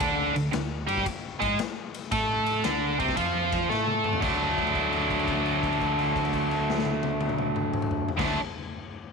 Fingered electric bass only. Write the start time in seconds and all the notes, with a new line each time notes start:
0.01 D2
0.37 D2
0.54 D2
0.89 G2
1.06 muted fingered electric bass stroke
1.42 G#2
2.12 A2
2.65 D2
3.00 C2
3.17 F2
3.70 A2
4.22 D2
8.19 D2